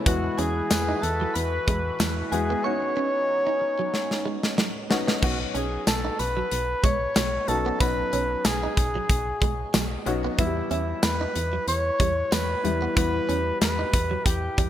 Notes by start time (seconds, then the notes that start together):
Already playing: E4
0.05 E2 E3 G#3 B3 E4 F#4 B4 F#5, kick, closed hi-hat
0.24 muted clean electric guitar stroke
0.38 E2 C#4 G#4 G#5, closed hi-hat
0.70 E2, snare, closed hi-hat, tambourine
0.89 D#4
1.02 E2 A4 A5, muted clean electric guitar stroke, closed hi-hat
1.21 F#3
1.34 E2 B4 B5, closed hi-hat
1.68 E2 G#3, kick, closed hi-hat
2.00 E2 F#3, snare, closed hi-hat, tambourine
2.31 E2 G#3 B3 E4 F#4 G#4 G#5, muted clean electric guitar stroke, closed hi-hat
2.50 B3
2.64 B3 C#4 D#4 F#4 C#5 C#6
2.82 muted clean electric guitar stroke
2.97 C#4
3.47 D#4
3.61 muted clean electric guitar stroke
3.79 F#3
3.94 snare
4.11 snare
4.25 G#3
4.43 snare
4.58 F#3, snare
4.90 B3 C#4 D#4 F#4, muted clean electric guitar stroke, snare
5.08 B3, snare
5.22 B1 F#3 B3 C#4 D#4 F#4 F#5, kick, crash
5.40 muted clean electric guitar stroke
5.55 B1 C#4 G#4 G#5, closed hi-hat
5.87 B1 A4 A5, snare, closed hi-hat, tambourine
6.05 D#4
6.19 B1 B4 B5, muted clean electric guitar stroke, closed hi-hat
6.37 F#3
6.51 B1, closed hi-hat
6.83 B1 G#3 C#5 C#6, kick, closed hi-hat
7.16 B1 F#3, snare, closed hi-hat, tambourine
7.48 B1 F#3 B3 C#4 D#4 F#4 A4 A5, muted clean electric guitar stroke, closed hi-hat
7.66 B3
7.80 B1 F#3 B3 C#4 D#4 F#4 B4 B5, kick, closed hi-hat
7.98 muted clean electric guitar stroke
8.13 B1 C#4, closed hi-hat
8.45 B1 G#4 G#5, snare, closed hi-hat, tambourine
8.63 D#4
8.77 B1, muted clean electric guitar stroke, kick, closed hi-hat
8.95 F#3
9.09 B1, kick, closed hi-hat
9.42 B1 G#3, kick, closed hi-hat
9.74 B1 F#3, snare, closed hi-hat, tambourine
10.06 B1 F#3 B3 C#4 D#4 F#4, muted clean electric guitar stroke, closed hi-hat
10.24 B3
10.38 E2 E3 G3 B3 E4 F#4 E5, kick, closed hi-hat
10.46 G4
10.57 muted clean electric guitar stroke
10.71 E2 C#4 E4 E5, closed hi-hat
11.03 E2 B4 B5, snare, closed hi-hat, tambourine
11.21 D#4
11.35 E2, muted clean electric guitar stroke, closed hi-hat
11.53 F#3
11.68 E2 C#5 C#6, closed hi-hat
12.00 E2 G3, kick, closed hi-hat
12.32 E2 F#3 B4 B5, snare, closed hi-hat, tambourine
12.64 E2 E3 G3 B3 E4 G4, muted clean electric guitar stroke, closed hi-hat
12.82 B3
12.96 E2 E3 G3 B3 E4 F#4 B4 B5, kick, closed hi-hat
13.15 muted clean electric guitar stroke
13.29 E2 C#4, closed hi-hat
13.61 E2 B4 B5, snare, closed hi-hat, tambourine
13.79 D#4
13.93 E2, muted clean electric guitar stroke, kick, closed hi-hat
14.11 F#3
14.26 E2 G4 G5, kick, closed hi-hat
14.58 E2 G3, kick, closed hi-hat